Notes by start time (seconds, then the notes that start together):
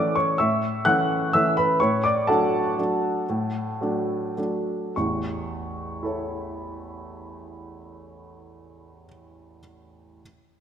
Already playing: E3 A3 C#4 D5 D6
0.15 C#5 C#6
0.38 A2 E5 C#6 E6
0.85 E3 A3 C#4 F#5 F#6
1.33 E3 A3 C#4 E5 E6
1.57 B4 B5
1.80 A2 C#5 C#6
2.04 D5 D6
2.27 F#3 A3 D4 A4 F#5 A5
2.78 F#3 A3 D4
3.29 A2
3.81 F#3 A3 D4
4.38 F#3 A3 D4
4.96 A1 E2 C#6
6.03 E4 A4 C#5